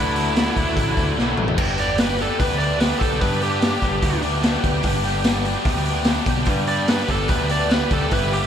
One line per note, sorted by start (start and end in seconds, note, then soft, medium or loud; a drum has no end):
0.00 0.48 D2 medium
0.00 0.54 D3 medium
0.00 0.55 F#3 medium
0.00 0.55 A3 medium
0.00 0.55 D4 medium
0.00 1.12 E4 medium
0.00 1.58 F#4 medium
0.00 0.53 A4 medium
0.00 1.55 D5 medium
0.00 1.56 F#5 medium
0.00 1.57 A5 medium
0.00 1.54 E6 medium
0.16 open hi-hat medium
0.36 snare loud
0.36 open hi-hat medium
0.55 0.74 D2 medium
0.55 1.15 D3 medium
0.55 1.16 F#3 medium
0.55 1.16 A3 medium
0.55 1.16 D4 medium
0.55 1.15 A4 medium
0.55 kick medium
0.55 open hi-hat medium
0.77 0.94 A1 medium
0.77 kick loud
0.77 open hi-hat medium
0.97 1.14 D2 medium
0.97 kick medium
0.97 open hi-hat soft
1.16 1.36 B1 medium
1.16 1.56 D3 medium
1.16 1.55 F#3 medium
1.16 1.56 A3 medium
1.16 1.56 D4 medium
1.16 1.58 A4 medium
1.16 snare medium
1.37 1.56 A1 medium
1.37 mid tom medium
1.48 floor tom medium
1.56 2.29 G1 loud
1.56 3.20 G2 medium
1.56 1.96 G3 medium
1.56 1.79 B3 medium
1.56 1.79 D4 medium
1.56 1.77 G4 loud
1.56 8.47 B4 medium
1.56 8.08 D5 medium
1.56 8.47 G5 medium
1.56 8.08 D6 medium
1.56 kick loud
1.56 crash loud
1.77 1.98 B3 medium
1.77 1.98 D4 medium
1.77 1.98 G4 medium
1.77 1.99 D5 medium
1.77 open hi-hat medium
1.97 2.77 G3 medium
1.97 2.20 B3 medium
1.97 2.19 D4 medium
1.97 2.17 G4 medium
1.97 2.19 B4 medium
1.97 snare loud
1.97 open hi-hat medium
2.18 3.82 G3 medium
2.18 2.60 B3 medium
2.18 2.59 D4 medium
2.18 2.58 G4 medium
2.18 2.40 A4 medium
2.18 open hi-hat medium
2.40 2.93 D2 medium
2.40 2.80 B3 medium
2.40 2.59 B4 medium
2.40 kick loud
2.40 open hi-hat medium
2.58 2.78 B3 medium
2.58 2.79 D4 medium
2.58 2.79 G4 medium
2.58 2.79 D5 medium
2.58 open hi-hat medium
2.78 3.20 G3 medium
2.78 3.20 B3 medium
2.78 3.21 D4 medium
2.78 3.22 G4 medium
2.78 2.99 B4 medium
2.78 snare medium
2.78 open hi-hat medium
2.92 snare soft
2.99 3.19 B1 medium
2.99 3.41 G4 medium
2.99 3.20 A4 medium
2.99 kick medium
2.99 open hi-hat medium
3.20 4.82 G2 medium
3.20 3.75 G2 medium
3.20 3.60 G3 medium
3.20 3.43 B3 medium
3.20 3.42 D4 medium
3.20 3.41 G4 medium
3.20 3.41 B4 medium
3.20 kick loud
3.20 open hi-hat medium
3.41 3.61 B3 medium
3.41 3.62 D4 medium
3.41 3.63 G4 medium
3.41 4.22 G4 medium
3.41 open hi-hat medium
3.61 4.41 G3 medium
3.61 3.82 B3 medium
3.61 3.81 D4 medium
3.61 3.80 G4 medium
3.61 snare loud
3.61 open hi-hat medium
3.81 4.00 G1 medium
3.81 5.43 G3 medium
3.81 4.24 B3 medium
3.81 4.22 D4 medium
3.81 4.21 G4 medium
3.81 kick medium
3.81 open hi-hat soft
4.02 4.56 D2 medium
4.02 4.42 B3 medium
4.02 kick loud
4.02 open hi-hat medium
4.22 4.43 B3 medium
4.22 4.43 D4 medium
4.22 4.44 G4 medium
4.22 open hi-hat medium
4.42 4.83 G3 medium
4.42 4.84 B3 medium
4.42 4.83 D4 loud
4.42 4.85 G4 loud
4.42 snare loud
4.42 open hi-hat medium
4.62 4.82 D2 medium
4.62 5.04 G4 medium
4.62 kick medium
4.62 open hi-hat medium
4.82 5.55 G1 loud
4.82 6.47 G2 medium
4.82 5.23 G3 medium
4.82 5.05 B3 medium
4.82 5.05 D4 medium
4.82 5.03 G4 medium
4.82 kick loud
4.82 open hi-hat medium
5.04 5.24 B3 medium
5.04 5.24 D4 medium
5.04 5.25 G4 medium
5.04 open hi-hat medium
5.23 6.05 G3 medium
5.23 5.47 B3 medium
5.23 5.46 D4 medium
5.23 5.45 G4 medium
5.23 snare loud
5.23 open hi-hat medium
5.43 7.07 G3 medium
5.43 5.89 B3 medium
5.43 5.87 D4 medium
5.43 5.86 G4 medium
5.43 open hi-hat medium
5.65 6.19 D2 loud
5.65 6.07 B3 medium
5.65 kick loud
5.65 open hi-hat medium
5.85 6.06 D4 medium
5.85 6.08 G4 medium
5.85 open hi-hat medium
5.90 6.06 B3 medium
6.04 6.46 G3 loud
6.04 6.46 B3 loud
6.04 6.47 D4 loud
6.04 6.48 G4 loud
6.04 snare loud
6.04 open hi-hat medium
6.16 snare soft
6.26 6.45 B1 medium
6.26 6.69 G4 medium
6.26 kick loud
6.26 open hi-hat medium
6.45 7.01 G2 loud
6.45 8.47 G2 medium
6.45 6.87 G3 medium
6.45 6.68 B3 loud
6.45 6.66 D4 medium
6.45 6.66 G4 medium
6.45 kick loud
6.45 open hi-hat medium
6.66 6.88 B3 medium
6.66 6.87 D4 medium
6.66 6.89 G4 medium
6.66 6.89 D5 medium
6.66 open hi-hat medium
6.87 7.68 G3 medium
6.87 7.09 B3 medium
6.87 7.07 D4 medium
6.87 7.06 G4 medium
6.87 7.09 B4 medium
6.87 snare loud
6.87 open hi-hat medium
7.07 7.27 G1 medium
7.07 8.11 G3 medium
7.07 7.51 B3 medium
7.07 7.49 D4 medium
7.07 7.48 G4 medium
7.07 7.29 A4 medium
7.07 kick medium
7.07 open hi-hat medium
7.27 7.83 D2 medium
7.27 7.69 B3 medium
7.27 7.50 B4 medium
7.27 kick loud
7.27 open hi-hat medium
7.49 7.70 B3 medium
7.49 7.69 D4 medium
7.49 7.71 G4 medium
7.49 7.71 D5 medium
7.49 open hi-hat medium
7.69 8.10 G3 medium
7.69 8.11 B3 medium
7.69 8.11 D4 medium
7.69 8.12 G4 loud
7.69 7.92 B4 medium
7.69 snare loud
7.69 open hi-hat medium
7.90 8.09 D2 medium
7.90 8.32 G4 medium
7.90 8.12 A4 medium
7.90 kick loud
7.90 open hi-hat medium
8.10 8.47 G1 loud
8.10 8.47 G3 medium
8.10 8.33 B3 medium
8.10 8.32 E4 loud
8.10 8.31 G4 medium
8.10 8.33 B4 medium
8.10 8.47 E5 medium
8.10 8.47 E6 medium
8.10 kick loud
8.10 open hi-hat medium
8.31 8.47 B3 medium
8.31 8.47 E4 medium
8.31 8.47 G4 medium
8.31 open hi-hat medium